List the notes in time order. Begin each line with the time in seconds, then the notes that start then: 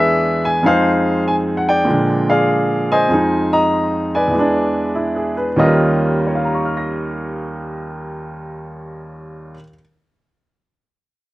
Already playing: E2 E3 G#3 D4 G#4 B4 D5 E5
0.45 G#5
0.63 F2 F3 G#3 D#4 G#4 C5 F5
1.28 G#5
1.57 F#5
1.69 D5 G5
1.85 A#2 F3 G#3
1.90 D3
2.30 G#4 D5 F5
2.92 C5 D#5 G#5
3.09 F2 F3 G#3
3.14 D#4
3.53 D#5 A#5
4.15 B4 D5 G#5
4.28 E2 E3
4.35 G#3 D4
4.95 E4
5.16 G#4
5.37 B4
5.56 D#2 D#3 G3 A#3 C#4 F4 D#5
6.20 A#4
6.27 C#5
6.35 F5
6.45 A#5
6.55 C#6
6.65 F6
6.77 A#6